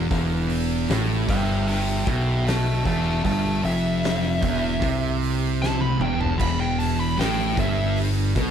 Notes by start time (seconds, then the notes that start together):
0.11 E1 E2, kick, open hi-hat
0.49 open hi-hat
0.89 A1 A2, snare, open hi-hat
1.28 G1 G2 E5 G5, kick, open hi-hat
1.67 E5 G5, open hi-hat
2.07 B1 B2 E5 G5, kick, open hi-hat
2.47 E5 A5, snare, open hi-hat
2.85 E1 E2 E5 A5, kick, open hi-hat
3.24 G1 G2 E5 A5, kick, open hi-hat
3.64 F1 F2 E5, open hi-hat
4.03 snare, open hi-hat
4.42 E1 E2, kick, open hi-hat
4.82 C2 C3, kick, open hi-hat
5.22 open hi-hat
5.62 A5, snare
5.81 B5, high tom
5.99 E1 E2 G5, mid tom
6.20 A5, floor tom
6.38 E1 E2 B5, kick, crash
6.60 G5
6.79 A5, open hi-hat
6.99 B5
7.18 A1 A2 G5, snare, open hi-hat
7.57 G1 G2 E5, kick, open hi-hat
7.96 open hi-hat
8.36 B1 B2, kick, open hi-hat